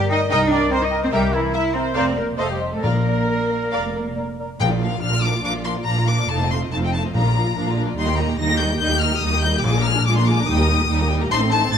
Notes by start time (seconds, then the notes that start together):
Already playing: A#4 D5
0.09 D#4 A#4 D#5 G5
0.30 C2 D#4 A#4 D#5 G5
0.51 D4 A#4 D5 G5
0.71 C4 A#4 C5 G5
0.82 D#4 D#5
0.91 A#4 G5
1.03 C4 C5
1.12 C2 G3 G4 A#4 E5 G5
1.33 E3 E4 A#4 E5
1.54 E4 A#4 E5
1.74 C4 A#4 C5 E5
1.94 F1 C4 A#4 C5 D5 F5
2.16 A#3 A#4 D5
2.37 F1 A3 A4 C5 D#5 F5
2.48 G3 G4
2.59 C5 D#5
2.71 A3 A4
2.81 A#1 A#2 A#3 A#4 D5 F5
3.06 A#4 D5
3.28 A#4 D5
3.51 A#4 D5
3.71 F1 A#4 D5 F5
3.94 A#4 D5
4.16 A#4 D5
4.40 A#4 D5
4.60 A#1 A#2 F3 D4 A#4 F5 G5
4.71 A#3 F4 D5
4.82 F3 D4 A#4 F5
4.92 A#3 F4 D5
5.02 A#1 A#2 F3 D4 A#4 F5 F6
5.13 A#3 F4 D5
5.23 F3 D4 A#4 F5 D6
5.33 A#3 F4 D5
5.43 A#1 A#2 F3 D4 A#4 F5 D6
5.54 A#3 F4 D5
5.64 F3 D4 A#4 F5 C6
5.76 A#3 F4 D5
5.87 A#1 A#2 F3 D4 A#4 F5 A#5
5.96 A#3 F4 D5
6.07 F3 D4 A#4 F5 D6
6.19 A#3 F4 D5
6.29 F1 F2 A3 D#4 A4 F5 A5
6.41 C4 F4 D#5
6.51 A3 D#4 A4 F5 C6
6.62 C4 F4 D#5
6.72 F1 F2 A3 D#4 A4 F5 A5
6.81 C4 F4 D#5 G5
6.93 A3 D#4 A4 F5 A5
7.03 C4 F4 D#5
7.13 A#1 A#2 F3 D4 A#4 F5 A#5
7.24 A#3 F4 D5
7.36 F3 D4 A#4 F5
7.46 A#3 F4 D5
7.56 A#1 A#2 F3 D4 A#4 F5
7.66 A#3 F4 D5
7.76 F3 D4 A#4 F5
7.87 A#3 F4 D5
7.96 D#2 D#3 G3 D#4 A#4 D#5 C6
8.07 A#3 G4 G5
8.18 G3 D#4 A#4 D#5 A#5
8.29 A#3 G4 G5
8.38 D#2 D#3 G3 D#4 A#4 D#5 A#6
8.50 A#3 G4 G5
8.59 G3 D#4 A#4 D#5 G6
8.70 A#3 G4 G5
8.80 D#2 D#3 G3 D#4 A#4 D#5 G6
8.92 A#3 G4 G5
9.01 G3 D#4 A#4 D#5 F6
9.12 A#3 G4 G5
9.22 D#2 D#3 G3 D#4 A#4 D#5 D#6
9.34 A#3 G4 G5
9.41 G3 D#4 A#4 D#5 G6
9.55 A#3 G4 G5
9.62 A#1 A#2 G#3 F4 G#4 G#5 D6
9.76 A#3 D4 A#4 A#5
9.85 G#3 F4 G#4 G#5 F6
9.97 A#3 D4 A#4 A#5
10.06 A#1 A#2 G#3 F4 G#4 G#5 D6
10.17 A#3 D4 A#4 A#5 C6
10.27 G#3 F4 G#4 G#5 D6
10.38 A#3 D4 A#4 A#5
10.47 D#2 G3 D#4 D#6
10.51 G4 G5
10.59 A#3 G4 A#4 A#5
10.70 G3 D#4 G4 G5
10.80 A#3 G4 A#4 A#5
10.89 D#2 G3 D#4 G4 G5
11.00 A#3 G4 A#4 A#5
11.10 G3 D#4 G4 G5
11.21 A#3 G4 A#4 A#5
11.30 A1 A2 A3 D#4 C5 A5 C6
11.41 C4 A4 C6
11.51 A3 D#4 C5 A5
11.61 C4 A4 C6
11.71 A1 A2 A3 D#4 C5 A5 A6